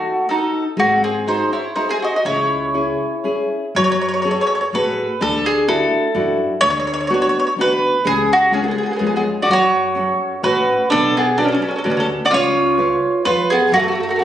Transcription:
Already playing: mandolin A3 F#4, nylon-string guitar D#4 F#4 A4
0.29 nylon-string guitar D#4 F#4 A4, mandolin D#4 A4
0.77 upright bass G#1, nylon-string guitar G#3, mandolin C4 F#4
1.04 mandolin C4 G#4
1.26 mandolin D#4 C5, nylon-string guitar F#4 G#4 C5
1.53 mandolin E4 C#5
1.76 mandolin D#4 C5, nylon-string guitar F#4 G#4 C5
1.89 mandolin C4 G#4
2.02 mandolin F#4 D#5
2.16 mandolin F#4 D#5
2.25 upright bass C#2, nylon-string guitar C#3, mandolin E4 C#5
2.74 nylon-string guitar C#4 E4 G#4
3.24 nylon-string guitar C#4 E4 G#4
3.75 upright bass F#2, nylon-string guitar F#3, mandolin C#5
3.84 mandolin C#5
3.92 mandolin C#5
4.01 mandolin C#5
4.09 mandolin C#5
4.14 mandolin C#5
4.22 nylon-string guitar F#4 G#4 A4, mandolin C#5
4.31 mandolin C#5
4.41 mandolin C#5
4.47 mandolin C#5
4.55 mandolin C#5
4.61 mandolin C#5
4.73 upright bass A2, nylon-string guitar F#4 G#4 A4, mandolin B4
5.21 upright bass D2, nylon-string guitar D3, mandolin A4
5.46 mandolin G#4
5.68 nylon-string guitar D4 E4 F#4, mandolin A4
6.15 upright bass F#2, nylon-string guitar D4 E4 F#4
6.61 upright bass D2, nylon-string guitar D3, mandolin C#5
6.70 mandolin C#5
6.80 mandolin C#5
6.87 mandolin C#5
6.94 mandolin C#5
7.01 mandolin C#5
7.07 nylon-string guitar B3 D4 F#4, mandolin C#5
7.14 mandolin C#5
7.22 mandolin C#5
7.29 mandolin C#5
7.40 mandolin C#5
7.47 mandolin C#5
7.56 upright bass D2, nylon-string guitar B3 D4 F#4
7.61 mandolin B4
8.05 upright bass C#2, nylon-string guitar C#3, mandolin G#4
8.33 mandolin F#4
8.51 nylon-string guitar G#3 C#4 F4, mandolin C#4 G#4
8.63 mandolin B3 G#4
8.68 mandolin B3 G#4
8.78 mandolin B3 G#4
8.83 mandolin B3 G#4
8.91 mandolin B3 G#4
8.96 upright bass F2, nylon-string guitar G#3, mandolin B3 G#4
9.01 nylon-string guitar C#4 F4
9.07 mandolin B3 G#4
9.16 mandolin B3 G#4
9.42 mandolin F#4 D5
9.48 upright bass F#2, nylon-string guitar F#3, mandolin F#4
9.53 mandolin C#5
9.95 nylon-string guitar C#4 F#4 A4
10.43 upright bass A2, nylon-string guitar C#4 F#4 A4, mandolin F#4 B4
10.90 upright bass B1, nylon-string guitar B3, mandolin D4 A4
11.17 mandolin B3 G#4
11.38 mandolin D4 A4, nylon-string guitar F#4 B4 D5
11.44 mandolin C#4
11.48 mandolin C#4 A4
11.54 mandolin A4
11.62 mandolin C#4 A4
11.68 mandolin C#4 A4
11.76 mandolin C#4 A4
11.84 upright bass D2, mandolin C#4 A4, nylon-string guitar F#4 B4 D5
11.90 mandolin C#4 A4
11.97 mandolin C#4 A4
12.25 mandolin F#4 D5
12.31 upright bass C#2, nylon-string guitar C#4, mandolin F4 C#5
12.78 nylon-string guitar B4 C#5 F5
13.25 upright bass F2, mandolin F4 B4, nylon-string guitar B4 C#5 F5
13.50 mandolin B3 G#4
13.72 upright bass F#2, nylon-string guitar F#3, mandolin A3 F#4
13.79 mandolin F#4
13.84 mandolin A3
13.88 mandolin A3 F#4
13.95 mandolin F#4
14.00 mandolin A3 F#4
14.09 mandolin A3 F#4
14.16 mandolin A3 F#4
14.20 nylon-string guitar E4 F#4

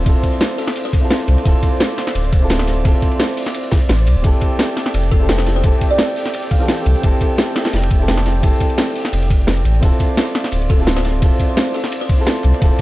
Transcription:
Already playing: grand piano C4 E4 F4 A4, analog synth pad C5 D5
0.04 sub bass D1, grand piano C4 E4 F4, kick, closed hi-hat, ride
0.08 grand piano A4
0.23 kick, closed hi-hat, ride, shaker
0.40 snare, closed hi-hat, ride
0.50 ride
0.58 kalimba A4, open hi-hat, shaker
0.68 snare, ride, shaker
0.76 closed hi-hat, ride
0.85 kalimba C5, closed hi-hat, ride
0.93 kick, closed hi-hat, ride, shaker
1.00 grand piano C4 E4 F4
1.04 grand piano A4
1.11 snare, closed hi-hat, ride
1.20 closed hi-hat, shaker
1.28 sub bass C2, closed hi-hat, ride, shaker
1.38 ride
1.43 sub bass D1, grand piano C4 E4 F4, kick, closed hi-hat, ride
1.48 grand piano A4
1.63 kick, closed hi-hat, ride, shaker
1.80 snare, closed hi-hat, ride
1.98 snare, closed hi-hat, ride, shaker
2.07 snare, ride, shaker
2.15 sub bass D1, closed hi-hat, ride
2.25 closed hi-hat
2.32 sub bass D1, kick, closed hi-hat, ride, shaker
2.40 grand piano C4 E4 F4
2.44 grand piano A4
2.50 snare, closed hi-hat, ride
2.59 snare, closed hi-hat, shaker
2.67 snare, closed hi-hat, ride, shaker
2.83 sub bass D1, grand piano C4 E4 F4, kick, closed hi-hat, ride
2.87 grand piano A4
2.94 shaker
3.02 kick, closed hi-hat, ride, shaker
3.12 closed hi-hat
3.19 snare, closed hi-hat, ride
3.29 ride
3.37 open hi-hat, shaker
3.46 snare, ride, shaker
3.54 closed hi-hat, ride
3.64 closed hi-hat, ride
3.72 kick, snare, closed hi-hat, ride, shaker
3.89 sub bass A1, snare, closed hi-hat, ride
3.98 closed hi-hat, ride, shaker
4.07 sub bass C2, closed hi-hat, ride, shaker
4.16 sub bass D1
4.22 sub bass F1, grand piano C4 E4 G4, analog synth pad A4 G5, kick, closed hi-hat, ride
4.26 grand piano A4
4.41 kick, closed hi-hat, ride, shaker
4.59 snare, closed hi-hat, ride
4.77 snare, closed hi-hat, ride, shaker
4.86 snare, ride, shaker
4.94 sub bass F1, closed hi-hat, ride
5.03 closed hi-hat
5.11 sub bass F1, kalimba A4, kick, closed hi-hat, ride, shaker
5.19 grand piano C4 E4 G4
5.23 grand piano A4
5.29 snare, closed hi-hat, ride
5.38 kalimba C5, snare, closed hi-hat, shaker
5.46 snare, closed hi-hat, ride, shaker
5.56 kalimba C5
5.62 sub bass F1, grand piano C4 E4 G4, kick, closed hi-hat, ride
5.66 grand piano A4
5.81 kick, closed hi-hat, ride, shaker
5.91 kalimba D5
5.98 snare, closed hi-hat, ride
6.08 ride
6.16 open hi-hat, shaker
6.25 snare, ride, shaker
6.34 closed hi-hat, ride
6.43 closed hi-hat, ride
6.51 kalimba F5, kick, closed hi-hat, ride, shaker
6.58 grand piano E3 C4 G4, kalimba F5
6.62 grand piano A4
6.68 snare, closed hi-hat, ride
6.78 closed hi-hat, shaker
6.86 sub bass C2, closed hi-hat, ride, shaker
6.96 ride
7.01 sub bass F1, grand piano C4 E4 G4, kick, closed hi-hat, ride
7.06 grand piano A4
7.21 kick, closed hi-hat, ride, shaker
7.38 snare, closed hi-hat, ride
7.56 snare, closed hi-hat, ride, shaker
7.65 snare, ride, shaker
7.73 sub bass F1, snare, closed hi-hat, ride
7.82 closed hi-hat, ride
7.91 sub bass F1, kick, closed hi-hat, ride, shaker
7.98 grand piano C4 E4 G4
8.02 grand piano A4
8.08 snare, closed hi-hat, ride
8.17 snare, closed hi-hat, shaker
8.26 snare, closed hi-hat, ride, shaker
8.41 sub bass F1, grand piano C4 E4 G4, kick, closed hi-hat, ride
8.45 grand piano A4
8.60 kick, closed hi-hat, ride, shaker
8.70 closed hi-hat
8.78 snare, closed hi-hat, ride
8.87 ride
8.96 open hi-hat, shaker
9.05 snare, ride, shaker
9.13 sub bass F1, closed hi-hat, ride
9.22 closed hi-hat, ride
9.30 kick, closed hi-hat, ride, shaker
9.47 snare, closed hi-hat, ride
9.57 closed hi-hat, shaker
9.65 sub bass A1, closed hi-hat, ride, shaker
9.74 ride
9.80 sub bass D1, grand piano C4 E4 F4, analog synth pad C5 D5, kick, closed hi-hat, crash, ride
9.85 grand piano A4
10.00 kick, closed hi-hat, ride, shaker
10.17 snare, closed hi-hat, ride
10.35 snare, closed hi-hat, ride, shaker
10.44 snare, ride, shaker
10.52 sub bass D1, closed hi-hat, ride
10.62 closed hi-hat
10.70 sub bass D1, kalimba A4, kick, closed hi-hat, ride, shaker
10.77 grand piano C4 E4 F4
10.81 grand piano A4
10.87 snare, closed hi-hat, ride
10.96 kalimba C5, snare, closed hi-hat, shaker
11.05 snare, closed hi-hat, ride, shaker
11.20 sub bass D1, grand piano C4 E4 F4, kick, closed hi-hat, ride
11.24 grand piano A4
11.40 kick, closed hi-hat, ride, shaker
11.57 snare, closed hi-hat, ride
11.66 ride
11.74 kalimba A4, open hi-hat, shaker
11.84 snare, ride, shaker
11.92 closed hi-hat, ride
12.00 kalimba C5, closed hi-hat, ride
12.09 kick, closed hi-hat, ride, shaker
12.16 grand piano C4 E4 F4
12.21 grand piano A4
12.27 snare, closed hi-hat, ride
12.36 closed hi-hat, shaker
12.43 sub bass C2, closed hi-hat, ride, shaker
12.54 ride
12.59 sub bass D1, grand piano C4 E4 F4, kick, closed hi-hat, ride
12.64 grand piano A4

